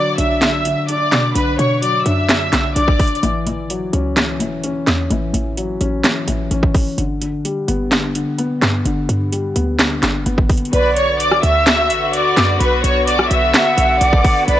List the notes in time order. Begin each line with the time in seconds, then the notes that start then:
Already playing: D3 F#3 D4 D5 D6
0.18 B1 D4 E5 E6, closed hi-hat
0.41 D3, snare, clap, closed hi-hat
0.65 D3, closed hi-hat
0.88 D4 D5 D6, closed hi-hat
1.12 B2, snare, clap, closed hi-hat
1.35 B1 D3 B4 B5, closed hi-hat
1.59 B2 D3 C#5 C#6, closed hi-hat
1.82 F#3 D5 D6, closed hi-hat
2.06 F#2 D4 E5 E6, closed hi-hat
2.29 D3, snare, clap, closed hi-hat
2.52 B1 D3, snare, clap, closed hi-hat
2.76 B1 D4 D5 D6, closed hi-hat
2.88 kick
2.99 kick, closed hi-hat, open hi-hat
3.07 closed hi-hat
3.15 closed hi-hat
3.23 A1 E3, closed hi-hat
3.47 E3, closed hi-hat
3.70 F#3, closed hi-hat
3.93 C#2 C#4, closed hi-hat
4.17 E3, snare, clap, closed hi-hat
4.40 G1 E3, closed hi-hat
4.63 C#2 C#4, closed hi-hat
4.87 E2, snare, clap, closed hi-hat
5.10 A1 E3, closed hi-hat
5.33 A1 E3, closed hi-hat
5.57 F#3, closed hi-hat
5.81 A1 C#4, closed hi-hat
6.04 E3, snare, clap, closed hi-hat
6.28 A1 E3, closed hi-hat
6.51 A1 C#4, closed hi-hat
6.63 kick
6.74 kick, open hi-hat
6.98 G1 D3, closed hi-hat
7.21 D3, closed hi-hat
7.45 G3, closed hi-hat
7.68 G1 B3, closed hi-hat
7.92 D3, snare, clap, closed hi-hat
8.15 D3, closed hi-hat
8.38 B3, closed hi-hat
8.62 G2, snare, clap, closed hi-hat
8.85 G1 D3, closed hi-hat
9.09 G2 D3, closed hi-hat
9.32 G3, closed hi-hat
9.56 D2 B3, closed hi-hat
9.79 D3, snare, clap, closed hi-hat
10.03 G1 D3, snare, clap, closed hi-hat
10.26 G1 B3, closed hi-hat
10.38 kick
10.49 kick, closed hi-hat, open hi-hat
10.57 closed hi-hat
10.65 closed hi-hat
10.73 B1 D3 B3 F#4 B4 D5 B5, closed hi-hat
10.96 C#5 C#6, closed hi-hat
11.20 D5 D6, closed hi-hat
11.32 cross-stick
11.43 D2 E5 E6, closed hi-hat
11.67 snare, clap, closed hi-hat
11.90 A1, closed hi-hat
12.13 D2 D5 D6, closed hi-hat
12.37 F#2, snare, clap, closed hi-hat
12.60 B1 B4 B5, closed hi-hat
12.84 B1 C#5 C#6, closed hi-hat
13.07 D5 D6, closed hi-hat
13.19 cross-stick
13.31 B1 E5 E6, closed hi-hat
13.54 F#5, snare, clap, closed hi-hat
13.78 B1, closed hi-hat
14.01 B1 D5 D6, closed hi-hat
14.13 kick
14.24 kick, open hi-hat
14.48 B1 E4 B4 D5 B5, closed hi-hat